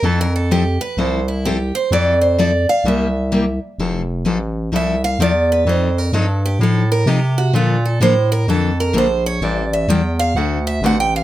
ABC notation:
X:1
M:4/4
L:1/8
Q:"Swing" 1/4=128
K:F
V:1 name="Steel-string acoustic guitar"
(3A B A G =B c E G c | d c d f e3 z | z4 e f d =B | c B A G A B G _G |
F A c B A B c _d | d e g f ^f e (3f g =f |]
V:2 name="Steel-string acoustic guitar"
[F,CEA] z [F,CEA] z [F,CEA] z [F,CEA] z | [F,CEA] z [F,CEA] z [C,G,B,EG] z [C,G,B,EG] z | [F,CEA] z [F,CEA] z [F,CEA] z [F,CEA] z | [F,C_EA] z [F,CEA] z [F,CEA] z [F,CEA] z |
[D,F,B,DA] z [D,F,B,DA] z [D,F,B,DA] z [D,F,B,DA] z | [E,G,CEA] z [E,G,CEA] z [D,A,C^FA] z [D,A,CFA] z |]
V:3 name="FM bass" clef=bass
F,,4 C,,4 | F,,4 C,,4 | F,,,2 A,,,2 C,,2 E,,2 | F,,2 G,,2 A,,2 C,2 |
B,,2 A,,2 F,,2 B,,,2 | A,,,2 E,,2 D,,2 A,,,2 |]